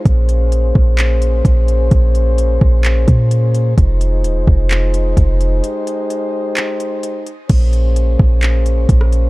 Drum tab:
CC |----------------|----------------|----------------|----------------|
HH |x-x-x---x-x-x-x-|x-x-x---x-x-x-x-|x-x-x---x-x-x-x-|x-x-x---x-x-x-x-|
CP |--------x-------|--------x-------|--------x-------|--------x-------|
SD |----------------|----------------|----------------|----------------|
BD |o-----o-----o---|o-----o---o-----|o-----o-----o---|----------------|

CC |x---------------|
HH |x-x-x---x-x-x-x-|
CP |--------x-------|
SD |-------------r--|
BD |o-----o-----o---|